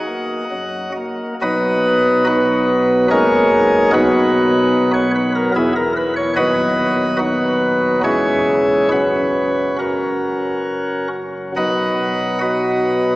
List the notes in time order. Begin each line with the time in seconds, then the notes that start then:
Already playing: F#4 D#5 F#5
0.06 A#3
0.51 F#2 F#3
0.97 A#3
1.42 B1 B2 F#3 B3 D#4 F#4 B4 D#5
2.27 D#4 F#4 B4
3.10 F#1 F#2 G#3 A#3 D#4 G#4 A#4 C#5
3.93 B1 B2 F#3 B3 D#4 F#4 B4
4.94 C#5
5.15 B4
5.35 A#4
5.56 E1 E2 E3 B3 E4 G#4
5.76 A#4
5.96 B4
6.16 C#5
6.36 D#1 D#2 F#3 B3 F#4 B4 D#5
7.19 D#4 F#4 B4
8.04 E1 E2 G#3 C#4 E4 G#4 C#5
8.91 F#1 F#2 F#3 C#4 F#4 B4
9.79 C#4 F#4 A#4
11.56 B1 B2 F#3 B3 D#4 B4 D#5 F#5
12.41 F#4 B4 D#5